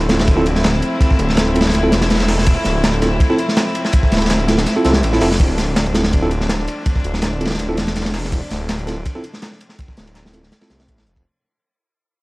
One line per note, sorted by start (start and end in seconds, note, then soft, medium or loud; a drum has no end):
0.00 0.81 D1 loud
0.00 11.21 F3 medium
0.00 11.21 A3 medium
0.00 11.21 C4 medium
0.00 5.37 E4 loud
0.00 closed hi-hat soft
0.00 ride soft
0.09 0.16 C4 medium
0.09 0.16 E4 medium
0.09 0.16 F4 medium
0.09 0.16 A4 medium
0.09 snare loud
0.09 closed hi-hat medium
0.09 ride medium
0.19 snare loud
0.19 ride medium
0.27 kick loud
0.27 closed hi-hat medium
0.27 ride medium
0.37 0.44 C4 loud
0.37 0.44 E4 medium
0.37 0.44 F4 medium
0.37 0.44 A4 loud
0.37 snare soft
0.46 closed hi-hat medium
0.46 ride medium
0.55 snare medium
0.64 snare loud
0.64 closed hi-hat medium
0.64 ride medium
0.73 snare soft
0.82 closed hi-hat medium
0.82 ride medium
1.01 kick loud
1.01 closed hi-hat medium
1.01 ride loud
1.10 kick loud
1.10 snare medium
1.19 1.72 D1 loud
1.19 closed hi-hat medium
1.19 ride medium
1.29 snare medium
1.37 snare loud
1.37 closed hi-hat medium
1.37 ride medium
1.47 ride soft
1.55 1.62 C4 medium
1.55 1.62 E4 medium
1.55 1.62 F4 medium
1.55 1.62 A4 medium
1.55 closed hi-hat medium
1.55 ride medium
1.61 snare medium
1.61 ride medium
1.65 snare soft
1.65 snare medium
1.65 ride medium
1.69 snare medium
1.69 ride medium
1.74 1.93 D1 medium
1.74 closed hi-hat medium
1.74 ride medium
1.83 1.91 C4 loud
1.83 1.91 E4 medium
1.83 1.91 F4 medium
1.83 1.91 A4 loud
1.92 2.55 E1 medium
1.92 snare loud
1.92 closed hi-hat medium
1.92 ride medium
2.01 snare loud
2.01 closed hi-hat soft
2.01 ride medium
2.10 snare loud
2.10 closed hi-hat medium
2.10 ride medium
2.15 snare loud
2.15 ride medium
2.20 snare soft
2.20 snare loud
2.20 ride medium
2.28 snare loud
2.28 closed hi-hat medium
2.28 open hi-hat medium
2.38 snare medium
2.46 kick loud
2.46 closed hi-hat medium
2.46 ride loud
2.64 3.19 D1 loud
2.64 snare medium
2.64 closed hi-hat medium
2.64 ride medium
2.84 snare loud
2.84 closed hi-hat medium
2.84 ride medium
2.93 closed hi-hat soft
2.93 ride soft
3.02 3.09 C4 medium
3.02 3.09 E4 medium
3.02 3.09 F4 medium
3.02 3.09 A4 medium
3.02 snare soft
3.02 closed hi-hat medium
3.02 ride medium
3.20 kick loud
3.20 closed hi-hat medium
3.20 ride medium
3.30 3.37 C4 loud
3.30 3.37 E4 medium
3.30 3.37 F4 medium
3.30 3.37 A4 loud
3.30 snare soft
3.38 closed hi-hat medium
3.38 ride medium
3.49 snare medium
3.57 snare loud
3.57 closed hi-hat medium
3.57 ride medium
3.67 snare soft
3.75 closed hi-hat medium
3.75 ride medium
3.85 snare medium
3.85 snare soft
3.93 kick loud
3.93 closed hi-hat medium
3.93 ride loud
4.03 kick medium
4.03 snare medium
4.12 4.65 D1 loud
4.12 snare medium
4.12 closed hi-hat medium
4.12 ride medium
4.17 snare medium
4.17 ride medium
4.22 snare loud
4.22 ride medium
4.26 snare loud
4.26 closed hi-hat medium
4.26 ride medium
4.30 snare loud
4.30 ride medium
4.40 ride soft
4.48 4.55 C4 medium
4.48 4.55 E4 medium
4.48 4.55 F4 medium
4.48 4.55 A4 medium
4.48 snare loud
4.48 closed hi-hat medium
4.48 ride medium
4.58 snare loud
4.58 snare soft
4.58 ride medium
4.66 snare loud
4.66 closed hi-hat medium
4.66 ride medium
4.76 4.83 C4 loud
4.76 4.83 E4 medium
4.76 4.83 F4 medium
4.76 4.83 A4 loud
4.85 5.03 C2 loud
4.85 4.92 C4 medium
4.85 4.92 E4 medium
4.85 4.92 F4 medium
4.85 4.92 A4 loud
4.85 snare soft
4.85 closed hi-hat medium
4.85 ride medium
4.93 snare loud
4.93 closed hi-hat soft
5.03 5.20 A1 loud
5.03 closed hi-hat medium
5.03 ride loud
5.13 5.19 C4 loud
5.13 5.19 E4 medium
5.13 5.19 F4 medium
5.13 5.19 A4 loud
5.13 snare medium
5.13 snare soft
5.21 5.38 F1 medium
5.21 5.28 C4 medium
5.21 5.28 E4 medium
5.21 5.28 F4 medium
5.21 5.28 A4 loud
5.21 snare loud
5.21 closed hi-hat medium
5.21 open hi-hat medium
5.31 snare medium
5.39 6.66 D1 loud
5.39 11.23 D4 medium
5.39 kick loud
5.39 closed hi-hat medium
5.39 ride loud
5.58 snare medium
5.58 closed hi-hat medium
5.58 ride medium
5.76 snare loud
5.76 closed hi-hat medium
5.76 ride medium
5.86 closed hi-hat soft
5.86 ride soft
5.94 6.01 C4 medium
5.94 6.01 E4 medium
5.94 6.01 F4 medium
5.94 6.01 A4 medium
5.94 snare loud
5.94 closed hi-hat medium
5.94 ride medium
6.04 snare loud
6.04 ride medium
6.13 kick loud
6.13 closed hi-hat medium
6.13 ride loud
6.22 6.30 C4 loud
6.22 6.30 E4 medium
6.22 6.30 F4 medium
6.22 6.30 A4 loud
6.22 snare soft
6.31 closed hi-hat medium
6.31 ride medium
6.41 snare medium
6.49 snare loud
6.49 closed hi-hat medium
6.49 ride medium
6.59 snare soft
6.68 closed hi-hat medium
6.68 ride medium
6.86 kick loud
6.86 closed hi-hat medium
6.86 ride medium
6.96 kick loud
6.96 snare medium
7.04 7.58 D1 loud
7.04 closed hi-hat medium
7.04 ride medium
7.14 snare medium
7.22 snare loud
7.22 closed hi-hat medium
7.22 ride medium
7.33 ride soft
7.41 7.48 C4 medium
7.41 7.48 E4 medium
7.41 7.48 F4 medium
7.41 7.48 A4 medium
7.41 closed hi-hat medium
7.41 ride medium
7.45 snare medium
7.45 ride medium
7.50 snare medium
7.50 snare soft
7.50 ride medium
7.54 snare medium
7.54 ride medium
7.59 7.79 D1 medium
7.59 closed hi-hat medium
7.59 ride medium
7.69 7.76 C4 loud
7.69 7.76 E4 medium
7.69 7.76 F4 medium
7.69 7.76 A4 loud
7.77 8.41 E1 medium
7.77 snare loud
7.77 closed hi-hat medium
7.77 ride medium
7.87 snare loud
7.87 closed hi-hat soft
7.87 ride medium
7.96 snare medium
7.96 closed hi-hat medium
7.96 ride medium
8.01 snare medium
8.01 ride medium
8.05 snare loud
8.05 snare soft
8.05 ride medium
8.14 snare loud
8.14 closed hi-hat medium
8.14 open hi-hat medium
8.24 snare medium
8.32 kick loud
8.32 closed hi-hat medium
8.32 ride loud
8.51 9.04 D1 loud
8.51 snare medium
8.51 closed hi-hat medium
8.51 ride medium
8.69 snare loud
8.69 closed hi-hat loud
8.69 ride loud
8.79 closed hi-hat soft
8.79 ride soft
8.87 8.94 C4 medium
8.87 8.94 E4 medium
8.87 8.94 F4 medium
8.87 8.94 A4 medium
8.87 snare soft
8.87 closed hi-hat medium
8.87 ride medium
9.06 kick loud
9.06 closed hi-hat medium
9.06 ride medium
9.15 9.23 C4 loud
9.15 9.23 E4 medium
9.15 9.23 F4 medium
9.15 9.23 A4 loud
9.15 snare soft
9.24 closed hi-hat medium
9.24 ride medium
9.34 snare medium
9.42 snare loud
9.42 closed hi-hat medium
9.42 ride medium
9.52 snare soft
9.61 closed hi-hat medium
9.61 ride medium
9.69 snare soft
9.69 snare medium
9.79 kick loud
9.79 closed hi-hat medium
9.79 ride medium
9.88 kick loud
9.88 snare medium
9.97 10.51 D1 loud
9.97 snare loud
9.97 closed hi-hat medium
10.07 snare medium
10.07 ride medium
10.15 snare loud
10.15 snare soft
10.15 closed hi-hat medium
10.26 snare loud
10.33 10.40 C4 medium
10.33 10.40 E4 medium
10.33 10.40 F4 medium
10.33 10.40 A4 medium
10.33 closed hi-hat medium
10.33 ride medium
10.43 snare soft
10.52 snare loud
10.52 closed hi-hat medium
10.52 ride medium
10.61 10.69 C4 loud
10.61 10.69 E4 medium
10.61 10.69 F4 medium
10.61 10.69 A4 loud
10.61 snare loud
10.61 ride medium
10.70 10.88 C2 medium
10.70 snare loud
10.70 closed hi-hat medium
10.70 ride medium
10.80 snare loud
10.80 closed hi-hat soft
10.80 ride medium
10.88 11.05 A1 loud
10.88 kick medium
10.88 closed hi-hat medium
10.88 ride medium
10.98 snare soft
10.98 snare medium
10.98 ride medium
11.07 11.23 F1 medium
11.07 closed hi-hat medium
11.07 ride soft
11.16 kick medium
11.16 snare soft
11.16 ride medium